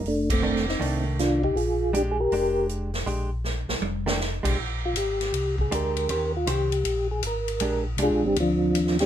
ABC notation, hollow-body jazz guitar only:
X:1
M:4/4
L:1/8
Q:"Swing" 1/4=159
K:Bbmix
V:1 name="Hollow-body jazz guitar"
z2 [E,=A,D] z [E,A,D]3 z | z2 [A,DG] z [A,DG]3 z | [A,DG] z4 [E,=A,D] z [_A,DG] | z6 [A,DG]2 |
[E,_DGc] z [E,DGc] z4 z | [A,DG] z [A,DG] z4 z |]